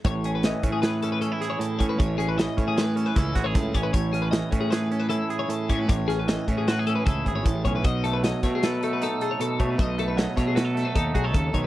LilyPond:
<<
  \new Staff \with { instrumentName = "Clean electric guitar" } { \time 5/4 \key a \lydian \tempo 4 = 154 cis''8 gis'16 b'16 dis''8 cis''16 gis'16 b'8 a'16 b'16 a'8 gis'16 cis''16 a'8 cis''16 b'16 | cis''8 gis'16 b'16 dis''8 cis''16 gis'16 b'8 a'16 b'16 a'8 gis'16 cis''16 a'8 cis''16 b'16 | cis''8 gis'16 b'16 dis''8 cis''16 gis'16 b'8 a'16 b'16 a'8 gis'16 cis''16 a'8 cis''16 b'16 | cis''8 gis'16 b'16 dis''8 cis''16 gis'16 b'8 a'16 b'16 a'8 gis'16 cis''16 a'8 cis''16 b'16 |
dis''8 a'16 b'16 dis''8 cis''16 gis'16 b'8 a'16 b'16 a'8 gis'16 cis''16 a'8 cis''16 b'16 | dis''8 a'16 b'16 dis''8 cis''16 gis'16 b'8 a'16 b'16 a'8 gis'16 cis''16 a'8 cis''16 r16 | }
  \new Staff \with { instrumentName = "Clean electric guitar" } { \time 5/4 \key a \lydian << { r8 cis'4 cis'8 gis'8 cis'8 cis'16 e'16 gis'4 cis'8 | r8 cis'4 cis'8 gis'8 cis'8 e'8 fis'16 gis'8. cis'8 | r8 cis'4 cis'8 gis'8 cis'8 e'8 gis'4 cis'8 | r8 cis'4 cis'8 fis'16 gis'16 cis'8 e'8 gis'4 cis'8 |
r8 a4 a8 a'8 a8 dis'8 a'4 a8~ | a8 a4 a8 fis'16 a'16 a8 dis'8 fis'16 a'4~ a'16 | } \\ { a,4 e2. a,4 | a,4 e2. a,4 | a,4 e2. a,4 | a,4 e2. a,4 |
b,4 fis2. b,4 | b,4 fis2. cis8 dis8 | } >> }
  \new Staff \with { instrumentName = "Picked electric bass" } { \clef bass \time 5/4 \key a \lydian a,,4. a,2 r4 a,8 | a,,4. a,4. cis,8 a,,8 cis,8 a,,8 | a,,4. a,2 r4 a,8 | a,,4. a,4. cis,8 gis,,8 a,,8 b,,8 |
b,,4. b,2 r4 b,8 | b,,4. b,4. dis,8 b,,8 dis,8 b,,8 | }
  \new DrumStaff \with { instrumentName = "Drums" } \drummode { \time 5/4 <hh bd>8 hh8 <hh sn>8 <hh bd>8 <hh sn>8 hh8 hh8 <hh sn>8 hh8 <hh bd>8 | <hh bd>8 hh8 <hh sn>8 <hh bd>8 <hh sn>8 hh8 <hh bd sn>8 <hh bd sn>8 <hh bd>8 <hh bd>8 | <hh bd>8 hh8 <hh sn>8 <hh bd>8 <hh sn>8 hh8 hh8 hh8 hh8 <hh bd>8 | <hh bd>8 <hh sn>8 <hh sn>8 <hh bd>8 <hh sn>8 hh8 <hh bd>8 <hh bd>8 <hh bd>8 <hh bd>8 |
<hh bd>8 hh8 <hh sn>8 <hh bd sn>8 <hh sn>8 hh8 hh8 hh8 hh8 <hh bd>8 | <hh bd>8 hh8 <hh sn>8 <hh bd sn>8 <hh sn>8 <hh sn>8 <hh bd>8 <hh bd>8 <hh bd>8 <hh bd>8 | }
>>